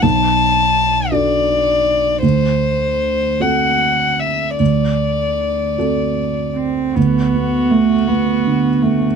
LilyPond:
<<
  \new Staff \with { instrumentName = "Violin" } { \time 6/8 \key b \minor \tempo 4. = 53 a''4. d''4. | c''4. fis''4 e''8 | d''2~ d''8 r8 | fis'2. | }
  \new Staff \with { instrumentName = "Felt piano" } { \time 6/8 \key b \minor b,,4. <d' fis' a'>4. | d,4. <c' fis' a'>4. | d,4. <c' fis' a'>4. | d,8 b8 a8 b8 d8 b8 | }
  \new Staff \with { instrumentName = "Cello" } { \time 6/8 \key b \minor r2. | r2. | r2 r8 c'8 | b4 a8 b4 a8 | }
>>